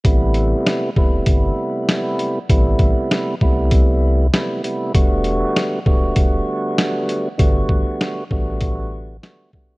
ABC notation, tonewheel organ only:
X:1
M:4/4
L:1/8
Q:"Swing 16ths" 1/4=98
K:Ador
V:1 name="Tonewheel organ"
[C,G,A,B,E]3 [C,G,A,B,E]4- [C,G,A,B,E] | [C,G,A,B,E]3 [C,G,A,B,E]3 [C,G,A,B,E] [C,G,A,B,E] | [D,G,A,B,F]3 [D,G,A,B,F]4- [D,G,A,B,F] | [D,G,A,B,F]3 [D,G,A,B,F]3 [D,G,A,B,F] [D,G,A,B,F] |]